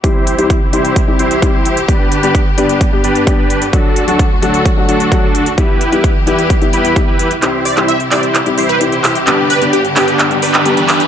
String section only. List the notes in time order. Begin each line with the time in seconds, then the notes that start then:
0.04 C2 C3 E4 G4
1.88 G2 D3 B3
3.73 D2 A3 F#4
5.58 E2 E3 B3 G4
7.42 C2 C3 E4 G4
9.27 G2 D3 B3